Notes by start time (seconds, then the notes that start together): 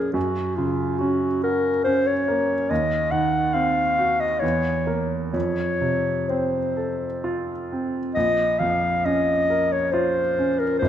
Already playing: A#1 F2 C#4 F4 G#4 A#4
0.13 F#2 F#4
0.56 C#3 F4
0.99 C#4 F#4
1.43 F#4 A#4
1.84 C#4 C5
2.07 C#5
2.28 A#3
2.70 D#2 D#5
3.11 D#3 F#5
3.54 C4 F5
3.99 F#4
4.20 D#5
4.40 E2 C#5
4.86 A#3 A#4
5.33 F2 C#5
5.81 C3
6.29 C4 C5
6.77 A4
7.24 F4
7.72 C4
8.14 A#1 D#5
8.59 F2 F5
9.05 C#4 D#5
9.50 A#4
9.72 C#5
9.92 F4 C5
10.39 C#4
10.59 A#4
10.79 G#1 C5